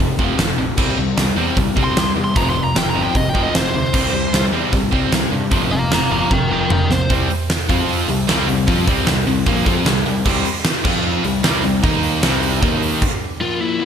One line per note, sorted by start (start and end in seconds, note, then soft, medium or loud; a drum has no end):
0.00 0.11 F1 medium
0.00 0.17 F2 medium
0.00 0.17 C3 medium
0.19 0.31 F1 medium
0.19 0.37 F2 medium
0.19 0.37 C3 loud
0.19 0.38 F3 loud
0.19 kick medium
0.38 0.50 F1 loud
0.38 0.56 F2 medium
0.38 0.57 C3 medium
0.38 snare loud
0.38 open hi-hat medium
0.58 0.70 A#1 medium
0.58 0.76 F2 medium
0.58 0.76 C3 medium
0.78 0.90 C2 medium
0.78 0.96 C3 loud
0.78 0.97 G3 medium
0.78 0.97 C4 loud
0.78 kick loud
0.78 crash medium
0.98 1.10 C2 medium
0.98 1.16 C3 medium
0.98 1.16 G3 medium
1.17 1.29 C2 loud
1.17 1.35 C3 medium
1.17 1.35 G3 medium
1.17 snare loud
1.17 open hi-hat medium
1.36 1.49 E2 medium
1.36 1.55 C3 medium
1.36 1.56 G3 medium
1.36 1.56 C4 medium
1.57 1.69 C2 loud
1.57 1.75 C3 medium
1.57 1.75 G3 medium
1.57 kick loud
1.57 open hi-hat medium
1.76 1.89 C2 medium
1.76 1.95 C3 loud
1.76 1.95 G3 loud
1.76 1.96 C4 medium
1.76 kick medium
1.84 2.09 C6 medium
1.96 2.09 C2 loud
1.96 2.14 C3 medium
1.96 2.14 G3 medium
1.96 snare loud
1.96 open hi-hat medium
2.16 2.29 E2 medium
2.16 2.34 C3 medium
2.16 2.34 G3 medium
2.24 2.36 C6 loud
2.35 2.48 F1 loud
2.35 2.54 F2 medium
2.35 2.55 C3 medium
2.35 2.55 F3 loud
2.35 2.49 A#5 medium
2.35 kick loud
2.35 open hi-hat medium
2.50 2.62 C6 medium
2.55 2.68 F1 medium
2.55 2.73 F2 medium
2.55 2.74 C3 medium
2.64 2.77 A#5 medium
2.75 2.88 F1 loud
2.75 2.93 F2 medium
2.75 2.93 C3 medium
2.75 2.89 G5 medium
2.75 snare loud
2.75 open hi-hat medium
2.90 3.02 A#5 loud
2.94 3.07 G1 medium
2.94 3.13 F2 medium
2.94 3.14 C3 loud
2.94 3.14 F3 loud
3.03 3.15 G5 loud
3.15 3.27 F1 loud
3.15 3.33 F2 medium
3.15 3.33 C3 medium
3.15 3.28 D#5 medium
3.15 kick loud
3.15 open hi-hat medium
3.29 3.42 G5 medium
3.34 3.47 F1 medium
3.34 3.53 F2 loud
3.34 3.53 C3 loud
3.34 3.54 F3 loud
3.34 kick medium
3.43 3.55 D#5 loud
3.54 3.67 F1 medium
3.54 3.72 F2 medium
3.54 3.72 C3 medium
3.54 3.68 C5 medium
3.54 snare loud
3.54 open hi-hat medium
3.69 4.45 C5 medium
3.73 3.87 D2 medium
3.73 3.92 F2 medium
3.73 3.92 C3 medium
3.93 4.06 C2 medium
3.93 4.12 C3 medium
3.93 4.12 G3 medium
3.93 4.13 C4 loud
3.93 kick loud
3.93 crash loud
4.13 4.25 C2 medium
4.13 4.31 C3 medium
4.13 4.31 G3 medium
4.33 4.45 C2 medium
4.33 4.51 C3 medium
4.33 4.51 G3 medium
4.33 snare loud
4.33 open hi-hat medium
4.52 4.65 E2 medium
4.52 4.71 C3 medium
4.52 4.71 G3 medium
4.52 4.72 C4 loud
4.72 4.85 C2 loud
4.72 4.90 C3 medium
4.72 4.91 G3 medium
4.72 kick loud
4.72 open hi-hat medium
4.91 5.05 C2 medium
4.91 5.10 C3 medium
4.91 5.11 G3 loud
4.91 5.11 C4 loud
4.91 kick medium
5.12 5.24 C2 medium
5.12 5.30 C3 medium
5.12 5.30 G3 medium
5.12 snare loud
5.12 open hi-hat medium
5.31 5.44 G2 medium
5.31 5.49 C3 medium
5.31 5.50 G3 medium
5.51 5.64 F1 loud
5.51 5.69 F2 medium
5.51 5.69 C3 loud
5.51 5.71 F3 loud
5.51 kick loud
5.51 open hi-hat medium
5.70 5.83 F1 medium
5.70 5.89 F2 medium
5.70 5.89 C3 medium
5.70 5.91 F5 loud
5.70 5.91 A#5 medium
5.91 6.03 F1 medium
5.91 6.09 F2 medium
5.91 6.09 C3 loud
5.91 6.11 F5 medium
5.91 6.11 A#5 medium
5.91 snare loud
5.91 open hi-hat medium
6.10 6.23 G1 medium
6.10 6.29 F2 medium
6.10 6.30 C3 medium
6.10 6.30 F3 loud
6.10 6.30 F5 medium
6.10 6.33 A#5 loud
6.30 6.43 F1 loud
6.30 6.48 F2 medium
6.30 6.49 C3 medium
6.30 6.51 A#4 medium
6.30 6.51 G5 medium
6.30 kick medium
6.30 high tom medium
6.50 6.62 F1 medium
6.50 6.69 F2 medium
6.50 6.69 C3 medium
6.50 6.69 F3 loud
6.50 6.70 A#4 medium
6.50 6.71 G5 medium
6.70 6.82 F1 medium
6.70 6.88 F2 medium
6.70 6.88 C3 loud
6.70 6.89 A#4 medium
6.70 6.90 G5 loud
6.70 mid tom loud
6.89 7.01 A#1 medium
6.89 7.08 F2 medium
6.89 7.08 C3 medium
6.89 7.10 C5 loud
6.89 snare medium
7.10 7.28 C2 medium
7.10 7.29 C3 loud
7.10 7.29 G3 medium
7.10 7.30 C4 loud
7.10 kick loud
7.10 open hi-hat medium
7.30 muted overdriven electric guitar stroke medium
7.30 muted picked electric bass stroke soft
7.30 muted distorted electric guitar stroke medium
7.30 open hi-hat medium
7.50 snare loud
7.50 open hi-hat medium
7.69 8.06 F2 medium
7.69 8.08 F3 medium
7.69 8.09 C4 medium
7.69 8.09 F4 loud
7.69 kick loud
7.69 open hi-hat medium
7.89 open hi-hat medium
8.08 8.27 C2 medium
8.08 8.25 C3 medium
8.08 8.25 G3 medium
8.08 open hi-hat medium
8.28 8.47 C2 loud
8.28 8.47 C3 loud
8.28 8.48 G3 loud
8.28 8.48 C4 loud
8.28 snare loud
8.28 open hi-hat medium
8.48 8.66 C2 medium
8.48 8.64 C3 medium
8.48 8.64 G3 medium
8.48 open hi-hat medium
8.67 8.86 F2 medium
8.67 8.86 F3 medium
8.67 8.87 C4 medium
8.67 8.87 F4 loud
8.67 kick loud
8.67 open hi-hat medium
8.87 9.06 C2 medium
8.87 9.06 C3 medium
8.87 9.07 G3 medium
8.87 9.07 C4 medium
8.87 kick loud
8.87 open hi-hat medium
9.07 9.26 C2 medium
9.07 9.23 C3 medium
9.07 9.23 G3 medium
9.07 snare loud
9.07 open hi-hat medium
9.26 9.45 C2 medium
9.26 9.43 C3 medium
9.26 9.43 G3 medium
9.26 open hi-hat medium
9.46 9.65 A#1 loud
9.46 9.66 A#2 loud
9.46 9.65 F3 medium
9.46 9.67 A#3 loud
9.46 kick loud
9.46 open hi-hat medium
9.66 9.85 F2 medium
9.66 9.86 F3 loud
9.66 9.86 C4 loud
9.66 9.86 F4 loud
9.66 kick loud
9.66 open hi-hat medium
9.86 10.04 C2 medium
9.86 10.02 C3 medium
9.86 10.02 G3 medium
9.86 snare loud
9.86 open hi-hat medium
10.06 10.25 C2 medium
10.06 10.22 C3 medium
10.06 10.22 G3 medium
10.06 open hi-hat medium
10.26 10.44 C2 loud
10.26 10.44 C3 loud
10.26 10.45 G3 loud
10.26 10.45 C4 loud
10.26 kick loud
10.26 crash loud
10.45 muted distorted electric guitar stroke medium
10.45 muted picked electric bass stroke soft
10.45 muted overdriven electric guitar stroke medium
10.45 open hi-hat medium
10.64 snare loud
10.64 open hi-hat medium
10.85 11.22 F2 loud
10.85 11.24 F3 medium
10.85 11.24 C4 medium
10.85 11.24 F4 medium
10.85 kick loud
10.85 crash medium
11.24 11.43 C2 medium
11.24 11.40 C3 medium
11.24 11.40 G3 medium
11.24 open hi-hat medium
11.43 11.63 C2 medium
11.43 11.62 C3 loud
11.43 11.63 G3 loud
11.43 11.64 C4 loud
11.43 snare loud
11.43 open hi-hat medium
11.64 11.83 C2 medium
11.64 11.80 C3 medium
11.64 11.80 G3 medium
11.64 open hi-hat medium
11.83 12.20 D#2 loud
11.83 12.22 D#3 medium
11.83 12.23 A#3 medium
11.83 12.23 D#4 loud
11.83 kick loud
11.83 open hi-hat medium
12.03 open hi-hat medium
12.23 12.60 C2 loud
12.23 12.62 C3 loud
12.23 12.62 G3 loud
12.23 12.62 C4 loud
12.23 snare loud
12.23 open hi-hat medium
12.43 open hi-hat medium
12.62 12.99 D#2 loud
12.62 13.01 D#3 medium
12.62 13.02 A#3 loud
12.62 13.02 D#4 loud
12.62 kick loud
12.62 open hi-hat medium
12.82 open hi-hat medium
13.02 kick loud
13.02 crash loud
13.41 13.60 A#2 loud
13.41 13.61 F3 loud
13.41 13.61 A#3 loud
13.41 13.60 F4 medium
13.60 13.80 A#2 medium
13.60 13.81 F3 medium
13.60 13.81 A#3 loud
13.60 13.85 E4 loud
13.81 13.85 A#2 medium
13.81 13.85 F3 loud
13.81 13.85 A#3 loud